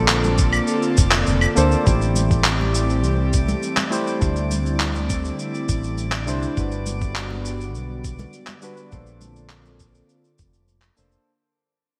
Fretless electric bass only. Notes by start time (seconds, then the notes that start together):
Already playing: A#1
0.98 F1
1.28 F1
1.57 D2
1.87 A1
3.05 C2
4.22 D2
5.69 A1
6.28 C2
6.57 G1
7.75 B1
8.93 A#1
10.40 F1
10.98 F1